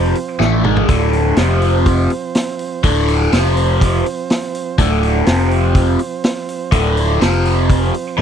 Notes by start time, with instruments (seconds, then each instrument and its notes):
Already playing: fingered electric bass F1, overdriven electric guitar F2 C3 F3, transistor combo organ F3 C4 C5
0.15 open hi-hat
0.39 fingered electric bass A1, overdriven electric guitar A2 E3 A3, transistor combo organ D4 A4, snare
0.64 fingered electric bass G#1, overdriven electric guitar G#2 D#3 G#3, mid tom
0.77 floor tom
0.88 fingered electric bass D1, overdriven electric guitar D2 A2 D3, kick, open hi-hat
1.13 open hi-hat
1.36 fingered electric bass F1, overdriven electric guitar F2 C3 F3, transistor combo organ C4 C5, snare, open hi-hat
1.62 open hi-hat
1.86 kick, open hi-hat
2.10 open hi-hat
2.35 snare, open hi-hat
2.59 open hi-hat
2.83 fingered electric bass D1, overdriven electric guitar D2 A2 D3, transistor combo organ D4 A4, kick, open hi-hat
3.08 open hi-hat
3.32 fingered electric bass F1, overdriven electric guitar F2 C3 F3, transistor combo organ C4 C5, snare, open hi-hat
3.57 open hi-hat
3.81 kick, open hi-hat
4.06 open hi-hat
4.30 snare, open hi-hat
4.55 open hi-hat
4.78 fingered electric bass D1, overdriven electric guitar D2 A2 D3, transistor combo organ D4 A4, kick, open hi-hat
5.03 open hi-hat
5.26 fingered electric bass F1, overdriven electric guitar F2 C3 F3, transistor combo organ F3 C4 C5, snare, open hi-hat
5.51 open hi-hat
5.75 kick, open hi-hat
5.99 open hi-hat
6.24 snare, open hi-hat
6.49 open hi-hat
6.72 fingered electric bass D1, overdriven electric guitar D2 A2 D3, transistor combo organ F3 D4 A4, kick, open hi-hat
6.97 open hi-hat
7.20 fingered electric bass F1, overdriven electric guitar F2 C3 F3, transistor combo organ C4 C5, snare, open hi-hat
7.45 open hi-hat
7.70 kick, open hi-hat
7.94 open hi-hat
8.17 fingered electric bass A1, overdriven electric guitar A2 E3 A3, transistor combo organ D4 A4